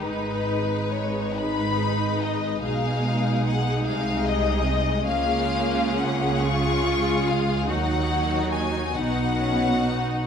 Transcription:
<<
  \new Staff \with { instrumentName = "Violin section" } { \time 6/8 \key gis \minor \tempo 4. = 47 b'4 cis''8 b''4 dis''8 | \key cis \mixolydian eis''4 fis''8 eis''8 dis''4 | eis''4 fis''8 cis'''4 eis''8 | fis''4 gis''8 fis''4. | }
  \new Staff \with { instrumentName = "Violin section" } { \time 6/8 \key gis \minor << { b'4. b'4. | \key cis \mixolydian gis'4. gis'4. | gis'2. | fis'4. fis'4. | } \\ { dis'2. | gis'4. gis'4. | eis'4. eis'4. | fis'4. dis'4. | } >> }
  \new Staff \with { instrumentName = "Viola section" } { \time 6/8 \key gis \minor << { dis'4. dis'4. | \key cis \mixolydian dis'2. | cis'4. eis'4. | dis'4. dis'8 cis'8 dis'8 | } \\ { gis2. | gis4. gis4. | ais4. gis4. | fis4. b4. | } >> }
  \new Staff \with { instrumentName = "Cello section" } { \clef bass \time 6/8 \key gis \minor gis,2. | \key cis \mixolydian b,4. bis,4. | cis2. | dis4. b,4. | }
  \new Staff \with { instrumentName = "Double bass section" } { \clef bass \time 6/8 \key gis \minor gis,,2. | \key cis \mixolydian b,,4. bis,,4. | cis,2. | dis,4. b,,4. | }
>>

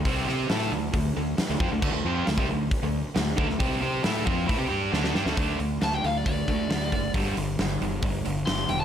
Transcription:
<<
  \new Staff \with { instrumentName = "Lead electric guitar" } { \time 4/4 \key d \minor \tempo 4 = 136 r1 | r1 | r1 | r4 a''16 g''16 f''16 d''16 d''2 |
r2. c'''8 g''16 a''16 | }
  \new Staff \with { instrumentName = "Overdriven electric guitar" } { \clef bass \time 4/4 \key d \minor <c g c'>8 <c' g' c''>8 <a e' a'>8 <d a>8 <d a>8 <d a>8 r16 <d a>16 <f c'>16 <d a>16 | <d a>16 <d a>16 <f c' f'>8 <d a>16 <c g>16 <d a>8 r16 <d a>8 r16 <d a>8 <d a>16 <d a>16 | <c g c'>8 <c' g' c''>8 <a e' a'>8 <f c' f'>8 <a e'>16 <c' g'>16 <g d' g'>8 <d a d'>8 <g d'>16 <d a>16 | <d a d'>8 <d a>8 <d a>8 <d a>8 <d a>8 <d a>8 <d a>8 <d a>8 |
<g, d g>8 <g, d>8 <g, d>8 <g, d>8 <g, d>8 <g, d>8 <g, d>8 <g, d>8 | }
  \new Staff \with { instrumentName = "Fingered electric bass" } { \clef bass \time 4/4 \key d \minor c,8 c8 a,8 d,8 d,8 d,8 r16 d,16 f,16 d,16 | d,16 d,16 f,8 d,16 c,16 d,8 r16 d,8 r16 d,8 d,16 d,16 | c,8 c8 a,8 f,8 a,16 c16 g,8 d,8 g,16 d,16 | d,8 d,8 d,8 d,8 d,8 d,8 d,8 fis,,8 |
g,,8 g,,8 g,,8 g,,8 g,,8 g,,8 g,,8 e,,8 | }
  \new DrumStaff \with { instrumentName = "Drums" } \drummode { \time 4/4 <hho bd>8 sn8 <hho sn>4 <hho bd>4 <hho sn>8 bd8 | <cymc bd>4 <hho sn>16 bd8. <hho bd>4 <hho sn>8 bd16 sn16 | <hho bd>4 <hho sn>8 bd8 <hho bd>4 sn16 sn16 sn16 sn16 | <hho bd>8 hho8 <hho sn>8 hho8 <hho bd>8 <hho bd>8 <hho sn>8 <hho bd>8 |
<hho bd>8 hho8 <hho sn>8 hho8 <hho bd>8 hho8 <hho sn>8 hho8 | }
>>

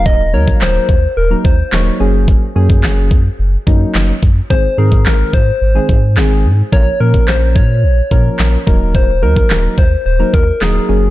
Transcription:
<<
  \new Staff \with { instrumentName = "Soft synth lead" } { \time 4/4 \key ees \dorian \tempo 4 = 108 ees''8 des''8 c''4 bes'8 c''4 r8 | r1 | c''8 aes'8 bes'8 c''2 r8 | des''8 bes'8 c''8 des''2 r8 |
c''8 bes'4 c''8 c''8 bes'8 aes'8. r16 | }
  \new Staff \with { instrumentName = "Synth keys" } { \time 4/4 \key ees \dorian <ges bes ees' bes'>16 r16 <ges bes ees' bes'>4 r8. <ges bes ees' bes'>8 r16 <ges bes ees' des''>8 <ges bes des' aes'>8~ | <ges bes des' aes'>16 r16 <ges bes des' aes'>4 r4 <ges bes des' ees'>8. r8. | <ees aes c' aes'>16 r16 <ees aes c' bes'>4 r8. <ees aes c' aes'>8 r16 <ees aes c' aes'>8 r8 | <f bes des' bes'>16 r16 <f bes des' bes'>4 r4 <f bes des' bes'>8. r16 <ges bes ees' bes'>8~ |
<ges bes ees' bes'>16 r16 <ges bes ees' bes'>4 r8. <ges bes ees' bes'>8 r16 <ges bes ees' bes'>8 <ges bes des' aes'>8 | }
  \new Staff \with { instrumentName = "Sub bass" } { \clef bass \time 4/4 \key ees \dorian ees,,8 ees,8 ees,,8 ees,8 ees,,8 ees,8 ees,,8 ges,,8~ | ges,,8 ges,8 ges,,8 ges,8 ges,,8 ges,8 ges,,8 ges,8 | aes,,8 aes,8 aes,,8 aes,8 aes,,8 aes,8 aes,,8 aes,8 | bes,,8 bes,8 bes,,8 bes,8 bes,,8 bes,8 bes,,8 ees,,8~ |
ees,,8 ees,8 ees,,8 ees,8 ees,,8 ees,8 ees,,8 ges,,8 | }
  \new DrumStaff \with { instrumentName = "Drums" } \drummode { \time 4/4 bd8. bd16 <hc sn>8 bd8 r8 bd8 <hc sn>4 | bd8. bd16 <hc sn>8 bd8 r8 bd8 <hc sn>8 bd8 | bd8. bd16 <hc sn>8 bd8 r8 bd8 <hc sn>4 | bd8. bd16 <hc sn>8 bd8 r8 bd8 <hc sn>8 bd8 |
bd8. bd16 <hc sn>8 bd8 r8 bd8 <hc sn>4 | }
>>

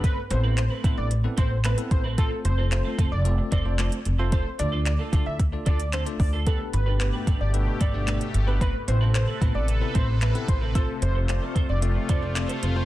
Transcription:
<<
  \new Staff \with { instrumentName = "Analog synth lead" } { \time 4/4 \key a \minor \tempo 4 = 112 b'8 c''8 c''16 r8 d''16 r8 c''8 b'16 r16 c''16 r16 | a'8 c''8 c''16 r8 d''16 r8 d''8. r8. | c''8 d''8 d''16 r8 e''16 r8 d''8 c''16 r16 d''16 r16 | a'8 b'8 b'16 r8 d''16 r8 d''8. r8. |
b'8 c''8 c''16 r8 d''16 r8 c''8 b'16 r16 c''16 r16 | a'8 c''8 c''16 r8 d''16 r8 d''8. r8. | }
  \new Staff \with { instrumentName = "Tine electric piano" } { \time 4/4 \key a \minor r8 <b c' e' a' b'>8 r8 <b c' e' a' b'>8 r16 <b c' e' a' b'>8 r8 <b c' e' a' b'>8 r16 | <a c' f' a' c''>8 r8 <a c' f' a' c''>8 r8 <a c' f' a' d''>8 r16 <a c' f' a' c''>8 r8 <a c' f' a' c''>16 | r8 <a d' f' a' d''>8 r8 <a d' f' a' d''>8 r16 <a d' f' a' d''>8 r8 <a d' f' a' d''>8 r16 | <b d' g' a' b'>8 r8 <b d' g' a' b'>8 r8 <b d' g' a' b'>8 r16 <b d' g' a' d''>8 r8 <b d' g' a' b'>16 |
r8 <b c' e' a' b'>8 r8 <b c' e' a' b'>8 r16 <b c' e' a' b'>8 r8 <b c' e' a' b'>8 r16 | <a c' f' a' c''>8 r8 <a c' f' a' d''>8 r8 <a c' f' a' d''>8 r16 <a c' f' a' c''>8 r8 <a c' f' a' c''>16 | }
  \new Staff \with { instrumentName = "Clean electric guitar" } { \time 4/4 \key a \minor <a c' e' b'>16 r8 <a c' e' b'>16 r16 <a c' e' b'>16 <a c' e' b'>16 r8. <a c' e' b'>16 r16 <a c' e' b'>16 r8 <a c' e' b'>16 | <a c' f' a'>16 r8 <a c' f' a'>16 r16 <a c' f' a'>16 <a c' f' a'>16 r8. <a c' f' a'>16 r16 <a c' f' a'>16 r8 <a c' f' a'>16 | <a d' f' a'>16 r8 <a d' f' a'>16 r16 <a d' f' a'>16 <a d' f' a'>16 r8. <a d' f' a'>16 r16 <a d' f' a'>16 r8 <a d' f' a'>16 | <a d' g' b'>16 r8 <a d' g' b'>16 r16 <a d' g' b'>16 <a d' g' b'>16 r8. <a d' g' b'>16 r16 <a d' g' b'>16 r8 <a d' g' b'>16 |
<a c' e' b'>16 r8 <a c' e' b'>16 r16 <a c' e' b'>16 <a c' e' b'>16 r8. <a c' e' b'>16 r16 <a c' e' b'>16 r8 <a c' e' b'>16 | <c' f' a' c''>16 r8 <c' f' a' c''>16 r16 <c' f' a' c''>16 <c' f' a' c''>16 r8. <c' f' a' c''>16 r8 <c' f' a' c''>16 <c' f' a' c''>16 r16 | }
  \new Staff \with { instrumentName = "Analog synth pad" } { \time 4/4 \key a \minor << { r1 | r1 | r1 | <a g'>1 |
<a' b'>1 | <a f'>1 | } \\ { r1 | r1 | r1 | b,1 |
c1~ | c1 | } >> }
  \new Staff \with { instrumentName = "Upright bass" } { \clef bass \time 4/4 \key a \minor g,,8 a,,4 a,,16 a,,8. a,,4 a,,8~ | a,,8 f,,4 f,,16 f,,8. f,,4 f,,8~ | f,,8 d,4 d,16 d,8. d,4 d,8~ | d,8 g,,4 g,,16 g,,8. g,,4 g,,8~ |
g,,8 a,,4 a,,16 a,,8. a,,4 a,,8~ | a,,8 f,,4 f,,16 f,,8. f,,4 f,,8 | }
  \new DrumStaff \with { instrumentName = "Drums" } \drummode { \time 4/4 <hh bd>8 hh8 <hc hh>8 <hh bd>8 hh8 <hh bd>8 <hc hh>16 hh16 <hh bd>8 | <hh bd>8 hh8 <hc hh>8 <hh bd>8 hh8 <hh bd>8 <hc hh>16 hh16 hh8 | <hh bd>8 hh8 <hc hh>8 <hh bd>8 <hh bd>8 <hh bd>16 hh16 <hc hh>16 hh16 <hho bd>8 | <hh bd>8 hh8 <hc hh>8 <hh bd>8 hh8 <hh bd>8 <hc hh>16 hh16 hh8 |
<hh bd>8 hh8 <hc hh>8 <hh bd>8 hh8 <hh bd>8 <hc hh>16 hh16 <hh bd>8 | <hh bd>8 hh8 <hc hh>8 <hh bd>8 hh8 <hh bd>8 <hc hh>16 hh16 hh8 | }
>>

